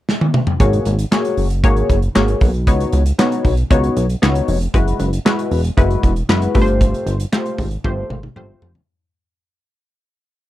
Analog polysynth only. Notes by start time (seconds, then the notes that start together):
0.60 A#3 F#4 G#4 C#5
1.11 A#3 F#4 G#4 C#5
1.64 A#3 F#4 G#4 C#5
2.15 A#3 F#4 G#4 C#5
2.67 B3 D#4 F#4 C#5
3.19 B3 D#4 F#4 C#5
3.70 B3 D#4 F#4 C#5
4.22 B3 D#4 F#4 C#5
4.74 G#3 E4 F#4 B4
5.25 G#3 E4 F#4 B4
5.77 G#3 E4 F#4 B4
6.29 G#3 E4 F#4 B4
6.55 A3 F4 G4 B4
6.62 C5
7.32 A3 F4 G4 C5
7.84 A3 F4 G4 C5
8.36 A3 F4 G4 C5